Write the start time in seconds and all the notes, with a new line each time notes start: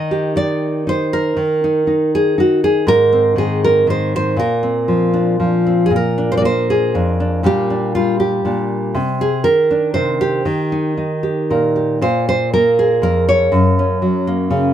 Already playing: D#3 D#4 D#5
0.11 G4
0.36 D#4 D5
0.87 D#4 C5
1.13 A#4
1.37 D#3
1.64 D#4
1.87 D#4
2.15 G#4
2.38 D#4 F#4
2.64 G#4
2.87 G#2 A#4
3.13 C4
3.36 D#3 G#4
3.64 A#4
3.87 D#3 C5
4.16 C5
4.37 A#2 A#4
4.63 C4
4.88 F3
5.13 D4
5.40 F3
5.67 C4
5.86 G#4
5.90 A#2
5.96 A#4
6.18 D4
6.32 C5
6.37 D5
6.42 A#3 C5
6.70 G#4
6.95 F2 D4
7.20 D4
7.43 A#2 G3 A#3 D4 G4
7.70 D4
7.95 G3 F4
8.20 G4
8.45 A#2 D4
8.95 C3
9.21 G#4
9.44 D#3 A#4
9.71 D4
9.94 C3 C5
10.21 G4
10.45 D#3
10.72 D#4
10.97 D#4
11.23 G4
11.50 A#2 A#4
11.76 G4
12.01 A#2 C5
12.29 C5
12.54 A#3 A#4
12.79 G#4
13.02 F2 A#4
13.29 C#5
13.52 F#2
13.79 C#4
14.02 F#3
14.27 A#3
14.50 C#3 C#4